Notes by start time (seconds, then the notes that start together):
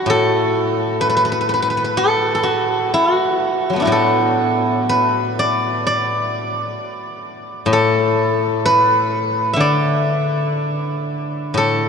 Already playing: F#4
0.06 A2 A4
1.01 B4
1.09 B4
1.17 B4
1.25 B4
1.32 B4
1.41 B4
1.49 B4
1.54 B4
1.62 B4
1.70 B4
1.77 B4
1.84 B4
1.97 A4
2.35 A4
2.43 F#4
2.94 E4
3.14 F#4
3.70 F#3 A3
3.76 B3 D4
3.82 E4 F#4
3.87 A2
3.92 A4
4.89 B4
5.39 D5
5.87 D5
7.66 A2
7.73 A4
8.66 B4
9.53 D3 E5
9.60 D5
11.54 A2 A4